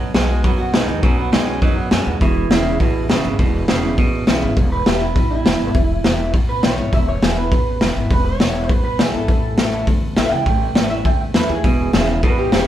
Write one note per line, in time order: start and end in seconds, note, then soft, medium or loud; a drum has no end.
0.00 0.13 B1 medium
0.00 0.12 B2 medium
0.00 0.42 B2 medium
0.00 0.12 F#3 medium
0.14 0.42 B1 medium
0.14 0.41 B2 medium
0.14 0.29 F#3 medium
0.14 0.28 G#3 medium
0.14 0.42 G#3 loud
0.14 0.30 B3 medium
0.14 0.30 D#4 medium
0.14 0.29 F#4 medium
0.14 snare loud
0.14 open hi-hat medium
0.29 0.43 G#3 medium
0.29 0.45 D#4 soft
0.29 0.44 F#4 medium
0.44 0.71 E2 medium
0.44 1.01 F#2 medium
0.44 0.71 B2 medium
0.44 0.71 F#3 loud
0.44 0.49 B3 loud
0.44 kick loud
0.44 open hi-hat medium
0.58 0.74 F#4 loud
0.73 0.87 B1 loud
0.73 1.00 B2 medium
0.73 1.02 F#3 medium
0.73 1.00 G#3 loud
0.73 1.02 B3 medium
0.73 0.87 D#4 loud
0.73 1.02 D#4 medium
0.73 1.03 F#4 loud
0.73 snare loud
0.73 open hi-hat medium
0.88 1.02 D#2 medium
0.88 1.02 D#4 loud
1.03 1.30 B1 loud
1.03 1.30 B2 medium
1.03 1.60 B2 loud
1.03 1.30 F#3 loud
1.03 1.18 C#4 loud
1.03 kick loud
1.03 open hi-hat medium
1.18 1.32 B3 loud
1.32 1.60 B1 medium
1.32 1.59 B2 medium
1.32 1.46 F#3 medium
1.32 1.59 G#3 loud
1.32 1.47 B3 medium
1.32 1.47 D#4 loud
1.32 1.47 F#4 medium
1.32 snare loud
1.32 open hi-hat soft
1.47 1.62 C#4 loud
1.47 1.63 D#4 soft
1.47 1.62 F#4 medium
1.62 1.89 E2 medium
1.62 2.19 F#2 medium
1.62 1.89 B2 medium
1.62 1.89 F#3 loud
1.62 1.77 D#4 loud
1.62 kick loud
1.62 open hi-hat soft
1.77 1.91 B3 loud
1.91 2.05 F#2 medium
1.91 2.18 B2 medium
1.91 2.06 F#3 medium
1.91 2.19 G#3 medium
1.91 2.06 B3 loud
1.91 2.06 C#4 medium
1.91 2.06 D#4 loud
1.91 2.05 F#4 loud
1.91 snare loud
1.91 open hi-hat soft
2.07 2.20 D#2 medium
2.07 2.12 B3 loud
2.07 2.22 D#4 medium
2.07 2.21 F#4 medium
2.21 2.48 E1 loud
2.21 2.48 E2 medium
2.21 2.78 E2 medium
2.21 2.48 B2 loud
2.21 4.24 E4 loud
2.21 kick loud
2.21 open hi-hat medium
2.51 2.77 E1 medium
2.51 2.77 E2 medium
2.51 2.77 C#3 loud
2.51 2.65 E3 medium
2.51 2.65 G#3 loud
2.51 2.66 B3 medium
2.51 2.64 E4 loud
2.51 snare loud
2.51 open hi-hat medium
2.66 2.81 B3 medium
2.66 2.80 E4 medium
2.80 3.07 A1 loud
2.80 3.07 E2 medium
2.80 3.07 B2 loud
2.80 3.36 B2 loud
2.80 kick loud
2.80 open hi-hat medium
3.09 3.23 E1 medium
3.09 3.36 E2 medium
3.09 3.36 C#3 medium
3.09 3.24 E3 medium
3.09 3.24 G#3 medium
3.09 3.25 B3 medium
3.09 3.24 E4 medium
3.09 snare loud
3.09 open hi-hat medium
3.25 3.38 G#1 medium
3.25 3.40 B3 medium
3.25 3.39 E4 medium
3.39 3.66 E1 medium
3.39 3.65 E2 medium
3.39 3.95 E2 medium
3.39 3.66 B2 medium
3.39 kick loud
3.39 open hi-hat medium
3.68 3.96 E1 medium
3.68 3.95 E2 medium
3.68 3.95 C#3 medium
3.68 3.82 E3 medium
3.68 3.83 G#3 medium
3.68 3.83 B3 medium
3.68 3.82 E4 loud
3.68 snare loud
3.68 open hi-hat medium
3.83 3.98 B3 medium
3.83 3.97 E4 medium
3.98 4.25 A1 medium
3.98 4.24 E2 medium
3.98 4.25 B2 loud
3.98 4.54 B2 medium
3.98 kick loud
3.98 open hi-hat soft
4.27 4.41 B1 medium
4.27 4.54 E2 medium
4.27 4.54 C#3 medium
4.27 4.41 E3 medium
4.27 4.42 G#3 medium
4.27 4.42 B3 loud
4.27 4.41 E4 loud
4.27 snare loud
4.27 open hi-hat medium
4.42 4.56 G#1 medium
4.42 4.57 B3 medium
4.42 4.56 E4 medium
4.57 4.84 E1 loud
4.57 5.13 E2 medium
4.57 kick loud
4.57 open hi-hat soft
4.72 4.86 B4 medium
4.86 5.14 E1 loud
4.86 5.00 E3 medium
4.86 5.01 G#3 medium
4.86 5.01 B3 medium
4.86 5.00 E4 loud
4.86 5.01 G4 medium
4.86 snare loud
4.86 open hi-hat medium
5.01 5.16 B3 soft
5.01 5.15 E4 medium
5.01 5.29 E4 medium
5.16 5.43 A1 medium
5.16 5.72 B2 medium
5.16 kick loud
5.16 open hi-hat medium
5.30 6.16 E4 loud
5.45 5.59 E1 medium
5.45 5.59 E3 medium
5.45 5.60 G#3 loud
5.45 5.60 B3 loud
5.45 5.59 E4 medium
5.45 snare loud
5.45 open hi-hat medium
5.60 5.74 G#1 medium
5.60 5.75 B3 medium
5.60 5.74 E4 medium
5.75 6.02 E1 loud
5.75 6.31 E2 medium
5.75 kick loud
5.75 open hi-hat medium
6.04 6.32 E1 loud
6.04 6.18 E3 medium
6.04 6.19 G#3 medium
6.04 6.19 B3 medium
6.04 6.18 E4 loud
6.04 snare loud
6.04 open hi-hat medium
6.19 6.34 B3 soft
6.19 6.33 E4 medium
6.34 6.61 A1 medium
6.34 6.90 B2 loud
6.34 kick loud
6.34 open hi-hat soft
6.49 6.63 B4 loud
6.63 6.77 B1 medium
6.63 6.78 E3 medium
6.63 6.78 G#3 medium
6.63 6.78 B3 medium
6.63 6.77 E4 loud
6.63 6.92 C#5 loud
6.63 snare loud
6.63 open hi-hat soft
6.78 6.92 G#1 medium
6.78 6.94 B3 medium
6.78 6.92 E4 medium
6.93 7.20 E1 loud
6.93 7.49 E2 loud
6.93 7.08 E5 medium
6.93 kick loud
6.93 open hi-hat medium
7.09 7.22 C#5 medium
7.22 7.50 E1 medium
7.22 7.36 E3 medium
7.22 7.37 G#3 loud
7.22 7.37 B3 loud
7.22 7.36 E4 medium
7.22 7.37 G#4 loud
7.22 snare loud
7.22 open hi-hat medium
7.37 7.52 B3 soft
7.37 7.51 E4 medium
7.37 7.95 B4 loud
7.52 7.79 A1 medium
7.52 8.08 B2 loud
7.52 kick loud
7.52 open hi-hat medium
7.81 7.95 E1 medium
7.81 7.95 E3 medium
7.81 7.96 G#3 medium
7.81 7.96 B3 loud
7.81 7.95 E4 loud
7.81 snare loud
7.81 open hi-hat medium
7.96 8.10 G#1 medium
7.96 8.11 B3 medium
7.96 8.10 E4 medium
8.10 8.38 E1 loud
8.10 8.67 E2 medium
8.10 8.25 B4 medium
8.10 kick loud
8.10 open hi-hat medium
8.26 8.73 C#5 loud
8.40 8.67 E1 loud
8.40 8.54 E3 medium
8.40 8.55 G#3 loud
8.40 8.55 B3 medium
8.40 8.54 E4 medium
8.40 snare loud
8.40 open hi-hat medium
8.55 8.70 B3 soft
8.55 8.69 E4 medium
8.69 8.96 A1 medium
8.69 9.26 B2 loud
8.69 8.83 B4 loud
8.69 kick loud
8.69 open hi-hat medium
8.85 8.99 B4 medium
8.99 9.13 B1 medium
8.99 9.13 E3 medium
8.99 9.14 G#3 medium
8.99 9.14 B3 loud
8.99 9.12 E4 loud
8.99 9.13 G#4 loud
8.99 snare loud
8.99 open hi-hat medium
9.13 9.28 G#1 medium
9.13 9.29 B3 medium
9.13 9.28 E4 medium
9.13 10.00 A4 loud
9.28 9.55 A1 loud
9.28 9.85 A2 medium
9.28 kick loud
9.28 open hi-hat soft
9.58 9.85 A1 medium
9.58 9.86 E3 medium
9.58 9.86 A3 medium
9.58 9.87 C#4 medium
9.58 9.87 E4 medium
9.58 snare loud
9.58 open hi-hat medium
9.87 10.14 D2 loud
9.87 10.44 E2 loud
9.87 kick loud
9.87 open hi-hat medium
10.16 10.30 A1 medium
10.16 10.31 E3 medium
10.16 10.31 A3 medium
10.16 10.31 C#4 medium
10.16 10.30 E4 loud
10.16 10.32 E5 loud
10.16 snare loud
10.16 open hi-hat medium
10.31 10.45 C#2 loud
10.31 10.47 C#4 medium
10.31 10.46 E4 medium
10.31 10.89 G5 loud
10.46 10.73 A1 loud
10.46 11.03 A2 medium
10.46 kick loud
10.46 open hi-hat medium
10.75 11.03 A1 loud
10.75 10.90 E3 medium
10.75 10.90 A3 medium
10.75 10.91 C#4 medium
10.75 10.89 E4 medium
10.75 snare loud
10.75 open hi-hat medium
10.90 11.06 C#4 soft
10.90 11.05 E4 medium
10.90 11.05 E5 loud
11.05 11.32 D2 medium
11.05 11.61 E2 loud
11.05 11.21 G5 medium
11.05 kick loud
11.05 open hi-hat medium
11.21 11.35 E5 loud
11.34 11.48 E2 loud
11.34 11.49 E3 medium
11.34 11.49 A3 loud
11.34 11.50 C#4 loud
11.34 11.48 E4 loud
11.34 11.49 B4 loud
11.34 snare loud
11.34 open hi-hat medium
11.49 11.63 D#2 medium
11.49 11.65 C#4 medium
11.49 11.63 E4 medium
11.49 12.07 G#4 loud
11.64 11.91 E1 loud
11.64 11.91 E2 medium
11.64 12.21 E2 medium
11.64 11.91 B2 loud
11.64 kick loud
11.64 open hi-hat medium
11.93 12.21 E1 loud
11.93 12.20 E2 medium
11.93 12.21 C#3 medium
11.93 12.08 E3 medium
11.93 12.08 G#3 medium
11.93 12.09 B3 loud
11.93 12.08 E4 medium
11.93 snare loud
11.93 open hi-hat medium
12.09 12.24 B3 medium
12.09 12.23 E4 medium
12.23 12.50 A1 medium
12.23 12.50 E2 medium
12.23 12.50 B2 medium
12.23 12.67 B2 loud
12.23 12.38 B4 loud
12.23 kick loud
12.23 open hi-hat soft
12.38 12.67 G4 loud
12.52 12.66 E1 medium
12.52 12.67 E2 medium
12.52 12.67 C#3 loud
12.52 12.67 E3 medium
12.52 12.67 G#3 medium
12.52 12.67 B3 medium
12.52 12.66 E4 medium
12.52 snare loud
12.52 open hi-hat soft